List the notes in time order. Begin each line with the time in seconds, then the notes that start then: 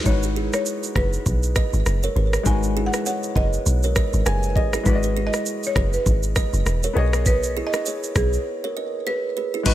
0.03 G#1 G#3 D#4 F#4 C#5, kick, shaker
0.08 B4
0.23 G#4 B4, shaker
0.36 E4 G#4
0.53 C#5, cross-stick, shaker
0.66 shaker
0.83 shaker
0.95 F#1 G#4 B4, kick, cross-stick
1.13 shaker
1.26 B1, kick, shaker
1.43 shaker
1.56 B4 D#5, kick, cross-stick, shaker
1.73 G#1, shaker
1.86 F#1, cross-stick, shaker
2.03 A#4 C#5, shaker
2.16 G#1 G#4 B4
2.33 cross-stick, shaker
2.43 G#1 G#3 D#4 F#4 G#5, kick, shaker
2.48 B4
2.63 shaker
2.77 E4 G#4
2.86 F#5
2.93 G#4 B4, cross-stick, shaker
3.06 G#4 C#5 F#5, shaker
3.23 shaker
3.36 F#1 G#4 B4 D#5, kick
3.53 shaker
3.66 B1, shaker
3.83 A#4 C#5, shaker
3.96 B4 D#5, kick, cross-stick, shaker
4.13 G#1, shaker
4.26 F#1 G#4 B4 G#5, cross-stick, shaker
4.43 shaker
4.56 G#1 G#4 B4 D#5, kick
4.73 E4 G#4, cross-stick, shaker
4.83 G#1 G#3 E4 F#4 B4, kick, shaker
4.88 D5
4.95 D#5
5.03 G#4 B4, shaker
5.17 E4 G#4
5.27 D#5
5.33 cross-stick, shaker
5.46 shaker
5.63 C#5, shaker
5.76 F#1 G#4 B4, kick, cross-stick
5.93 B4, shaker
6.06 G#1, kick, shaker
6.23 shaker
6.36 B4 D#5, kick, cross-stick, shaker
6.53 F#1, shaker
6.66 E1, cross-stick, shaker
6.83 A#4 C#5, shaker
6.93 B1 B3 G#4 B4 C#5
6.98 G#4 D#5
7.13 cross-stick, shaker
7.26 B4, kick, shaker
7.43 shaker
7.57 E4 G#4
7.67 D#5
7.73 G#4 B4, cross-stick, shaker
7.86 G#4 C#5, shaker
8.03 shaker
8.15 B1 G#4 B4, kick, cross-stick, shaker
8.33 shaker
8.64 A#4 C#5
8.77 B4 D#5
9.07 G#4 B4
9.37 G#4 B4
9.54 E4 G#4
9.63 G#1 G#3 D#4 F#4 B4 D#5, kick, crash, shaker
9.68 B4